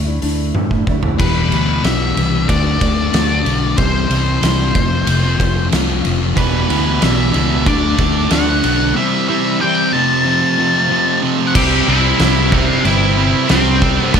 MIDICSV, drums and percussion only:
0, 0, Header, 1, 2, 480
1, 0, Start_track
1, 0, Tempo, 647948
1, 882, Time_signature, 4, 2, 24, 8
1, 10519, End_track
2, 0, Start_track
2, 0, Title_t, "Drums"
2, 163, Note_on_c, 9, 46, 59
2, 237, Note_off_c, 9, 46, 0
2, 404, Note_on_c, 9, 48, 58
2, 478, Note_off_c, 9, 48, 0
2, 525, Note_on_c, 9, 36, 46
2, 599, Note_off_c, 9, 36, 0
2, 645, Note_on_c, 9, 36, 77
2, 719, Note_off_c, 9, 36, 0
2, 761, Note_on_c, 9, 43, 82
2, 835, Note_off_c, 9, 43, 0
2, 886, Note_on_c, 9, 36, 99
2, 886, Note_on_c, 9, 49, 97
2, 960, Note_off_c, 9, 36, 0
2, 960, Note_off_c, 9, 49, 0
2, 1126, Note_on_c, 9, 51, 61
2, 1200, Note_off_c, 9, 51, 0
2, 1366, Note_on_c, 9, 51, 78
2, 1372, Note_on_c, 9, 38, 98
2, 1440, Note_off_c, 9, 51, 0
2, 1446, Note_off_c, 9, 38, 0
2, 1609, Note_on_c, 9, 51, 64
2, 1683, Note_off_c, 9, 51, 0
2, 1845, Note_on_c, 9, 36, 114
2, 1847, Note_on_c, 9, 51, 87
2, 1919, Note_off_c, 9, 36, 0
2, 1921, Note_off_c, 9, 51, 0
2, 2084, Note_on_c, 9, 36, 84
2, 2084, Note_on_c, 9, 51, 72
2, 2158, Note_off_c, 9, 36, 0
2, 2158, Note_off_c, 9, 51, 0
2, 2324, Note_on_c, 9, 51, 84
2, 2330, Note_on_c, 9, 38, 105
2, 2398, Note_off_c, 9, 51, 0
2, 2404, Note_off_c, 9, 38, 0
2, 2564, Note_on_c, 9, 51, 65
2, 2638, Note_off_c, 9, 51, 0
2, 2798, Note_on_c, 9, 51, 81
2, 2801, Note_on_c, 9, 36, 99
2, 2872, Note_off_c, 9, 51, 0
2, 2875, Note_off_c, 9, 36, 0
2, 3041, Note_on_c, 9, 51, 72
2, 3115, Note_off_c, 9, 51, 0
2, 3281, Note_on_c, 9, 51, 90
2, 3287, Note_on_c, 9, 38, 104
2, 3355, Note_off_c, 9, 51, 0
2, 3361, Note_off_c, 9, 38, 0
2, 3520, Note_on_c, 9, 36, 101
2, 3522, Note_on_c, 9, 51, 68
2, 3594, Note_off_c, 9, 36, 0
2, 3596, Note_off_c, 9, 51, 0
2, 3757, Note_on_c, 9, 51, 91
2, 3831, Note_off_c, 9, 51, 0
2, 3999, Note_on_c, 9, 36, 86
2, 4005, Note_on_c, 9, 51, 75
2, 4073, Note_off_c, 9, 36, 0
2, 4079, Note_off_c, 9, 51, 0
2, 4240, Note_on_c, 9, 51, 94
2, 4246, Note_on_c, 9, 38, 110
2, 4314, Note_off_c, 9, 51, 0
2, 4320, Note_off_c, 9, 38, 0
2, 4479, Note_on_c, 9, 51, 60
2, 4553, Note_off_c, 9, 51, 0
2, 4718, Note_on_c, 9, 36, 98
2, 4720, Note_on_c, 9, 51, 85
2, 4792, Note_off_c, 9, 36, 0
2, 4794, Note_off_c, 9, 51, 0
2, 4964, Note_on_c, 9, 51, 63
2, 5038, Note_off_c, 9, 51, 0
2, 5199, Note_on_c, 9, 51, 83
2, 5205, Note_on_c, 9, 38, 105
2, 5273, Note_off_c, 9, 51, 0
2, 5279, Note_off_c, 9, 38, 0
2, 5437, Note_on_c, 9, 51, 64
2, 5512, Note_off_c, 9, 51, 0
2, 5678, Note_on_c, 9, 36, 103
2, 5678, Note_on_c, 9, 51, 75
2, 5752, Note_off_c, 9, 36, 0
2, 5752, Note_off_c, 9, 51, 0
2, 5915, Note_on_c, 9, 51, 67
2, 5916, Note_on_c, 9, 36, 89
2, 5989, Note_off_c, 9, 51, 0
2, 5990, Note_off_c, 9, 36, 0
2, 6153, Note_on_c, 9, 51, 87
2, 6159, Note_on_c, 9, 38, 110
2, 6227, Note_off_c, 9, 51, 0
2, 6233, Note_off_c, 9, 38, 0
2, 6397, Note_on_c, 9, 51, 68
2, 6471, Note_off_c, 9, 51, 0
2, 8558, Note_on_c, 9, 36, 98
2, 8559, Note_on_c, 9, 49, 116
2, 8559, Note_on_c, 9, 57, 56
2, 8632, Note_off_c, 9, 36, 0
2, 8633, Note_off_c, 9, 49, 0
2, 8633, Note_off_c, 9, 57, 0
2, 9034, Note_on_c, 9, 57, 63
2, 9040, Note_on_c, 9, 38, 107
2, 9108, Note_off_c, 9, 57, 0
2, 9114, Note_off_c, 9, 38, 0
2, 9276, Note_on_c, 9, 36, 88
2, 9350, Note_off_c, 9, 36, 0
2, 9520, Note_on_c, 9, 57, 56
2, 9594, Note_off_c, 9, 57, 0
2, 9994, Note_on_c, 9, 57, 57
2, 10000, Note_on_c, 9, 38, 105
2, 10069, Note_off_c, 9, 57, 0
2, 10074, Note_off_c, 9, 38, 0
2, 10237, Note_on_c, 9, 36, 82
2, 10311, Note_off_c, 9, 36, 0
2, 10474, Note_on_c, 9, 57, 53
2, 10477, Note_on_c, 9, 36, 95
2, 10519, Note_off_c, 9, 36, 0
2, 10519, Note_off_c, 9, 57, 0
2, 10519, End_track
0, 0, End_of_file